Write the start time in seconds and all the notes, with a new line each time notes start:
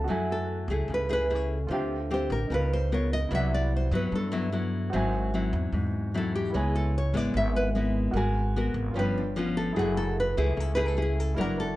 Already playing: F4 B4 C#5 E5 F5 A5
0.04 F#2 F#4
0.08 F#3 A3 E4 E5 G#5
0.32 A4
0.68 C#2 A3 E4 G#4
0.88 C#2 C#3
0.94 B4
1.09 A3 E4 G#4 B4
1.30 A3 E4 G#4
1.35 C#5
1.67 D2 D3 C4 F4 C5
1.71 F4 G4 E5 G5
2.11 C4 F4 G4 C5
2.30 A1 A#4
2.47 C#2 C#3 B3 D#4 A#4 B4
2.52 F4 A#4 B4 F5
2.73 C5
2.92 B3 F4 A#4 C#5
3.13 D#5
3.29 C2 C3 F#3 B3 E4 B4 D5
3.33 E4 E5 F#5
3.54 D5
3.77 C5
3.91 G2 F#3 B3 E4 B4
4.12 G2 A4
4.32 F#3 B3 E4
4.52 F#3 B3 E4
4.90 G#1 G#2 F#3 C4 F#4 C5
4.94 E4 E5 G#5
5.34 F#3 C4 E4
5.53 E2
5.73 E2 G#2
6.14 F#3 C4 E4 A4
6.35 G4
6.50 C#2 C#3 E4 B4
6.54 G#3 B3 E4 G#4 C#5 G#5
6.76 A4
6.98 C#5
7.14 G#1 G#3 B3 E4 D5
7.34 G#1 G#2 E5
7.56 B4
7.75 G#3 B3 E4
8.11 G#1 F#4 A#4
8.16 G#3 B3 F#4 A#4 G#5
8.56 B3 F#4 A#4
8.74 G#1
8.91 G1 F4 B4
8.95 G2 F3 B3 C#4 B4 C#5 G5
9.18 D4
9.36 F3 B3 C#4 F4
9.57 A4
9.72 F#1 F#3 A3 E4 G#4
9.76 E4 G#4 F#5
9.97 A4
10.20 B4
10.37 C#2 A3 E4 G#4
10.57 C#2 C#3 A4
10.75 A3 E4 G#4 B4
10.88 A4
10.97 A3 E4 G#4
11.02 G#4
11.20 A4
11.34 F#1 F#3 D4 E4 A#4 D5
11.40 A#4 F#5
11.60 A4